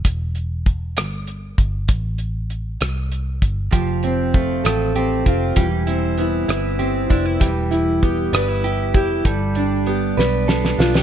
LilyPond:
<<
  \new Staff \with { instrumentName = "Steel-string acoustic guitar" } { \time 6/8 \key e \phrygian \tempo 4. = 65 r2. | r2. | f8 c'8 f'8 a'8 c'8 f'8 | e8 c'8 e'8 b'8 c'8 e'8 |
e8 e'8 g'8 b'8 e'8 g'8 | g8 d'8 g'8 b'8 d'8 f'16 g'16 | }
  \new Staff \with { instrumentName = "Clean electric guitar" } { \time 6/8 \key e \phrygian r2. | r2. | <f g'>8 c'8 a8 c'8 g'8 c'8 | <g g'>8 e'8 b8 e'8 g'8 d'16 e'16 |
<g g'>8 e'8 b8 d'16 e'16 g'8 e'8 | <g a'>8 d'8 b8 d'8 a'8 d'8 | }
  \new Staff \with { instrumentName = "Fingered electric bass" } { \clef bass \time 6/8 \key e \phrygian e,,4. g,,4 g,,8 | a,,4. c,4 g,,8 | f,,4. a,,4 f,,8 | e,,4. g,,4 f,,8 |
e,,4. g,,4 f,,8 | g,,4. b,,4 b,,8 | }
  \new DrumStaff \with { instrumentName = "Drums" } \drummode { \time 6/8 <hh bd>8 hh8 <hh bd>8 <hh ss>8 hh8 <hh bd>8 | <hh bd>8 hh8 hh8 <hh ss>8 hh8 <hh bd>8 | <hh bd>8 hh8 <hh bd>8 <hh ss>8 hh8 <hh bd>8 | <hh bd>8 hh8 hh8 <hh ss>8 hh8 <hh bd>8 |
<hh bd>8 hh8 <hh bd>8 <hh ss>8 hh8 <hh bd>8 | <hh bd>8 hh8 hh8 sn8 sn16 sn16 sn16 sn16 | }
>>